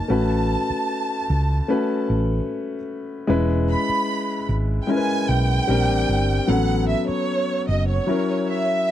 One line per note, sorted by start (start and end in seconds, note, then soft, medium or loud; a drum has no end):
0.00 0.11 A#3 medium
0.00 0.12 D#4 medium
0.00 0.10 F#4 medium
0.00 0.12 C#5 medium
0.00 2.09 A5 medium
0.08 0.55 A1 medium
0.08 1.16 A3 medium
0.08 1.16 C#4 medium
0.08 1.17 F#4 medium
0.08 1.17 B4 medium
0.70 muted fingered electric bass stroke soft
1.30 1.60 C#2 medium
1.68 2.76 A3 medium
1.68 2.76 C#4 medium
1.68 2.77 F#4 medium
1.68 2.77 B4 medium
2.10 2.39 A1 medium
3.27 3.74 E1 medium
3.27 4.35 G#3 medium
3.27 4.35 C#4 medium
3.27 4.36 E4 medium
3.27 4.36 B4 medium
3.69 4.45 B5 loud
3.89 muted fingered electric bass stroke soft
4.49 4.79 G#1 medium
4.82 4.88 G5 medium
4.87 5.67 G#3 medium
4.87 5.68 C#4 medium
4.87 5.68 E4 medium
4.87 4.95 A#4 medium
4.87 5.29 G#5 loud
4.96 5.72 B4 medium
5.29 5.59 B1 medium
5.29 6.48 G5 loud
5.68 5.89 A#1 medium
5.68 6.32 G3 medium
5.68 6.32 C4 medium
5.68 6.32 D4 medium
5.68 6.33 A#4 medium
5.89 6.04 A1 medium
6.09 6.39 G1 medium
6.47 6.93 A1 medium
6.47 7.55 F#3 medium
6.47 7.55 B3 medium
6.47 7.55 C#4 medium
6.47 7.56 A4 medium
6.47 6.88 F#5 medium
6.88 7.07 E5 medium
7.09 7.64 C#5 medium
7.09 muted fingered electric bass stroke soft
7.69 7.98 F#1 medium
7.69 7.88 D#5 medium
7.89 8.64 C#5 medium
8.07 8.91 F#3 medium
8.07 8.91 C#4 medium
8.07 8.91 E4 medium
8.07 8.91 A#4 medium
8.49 8.91 E5 medium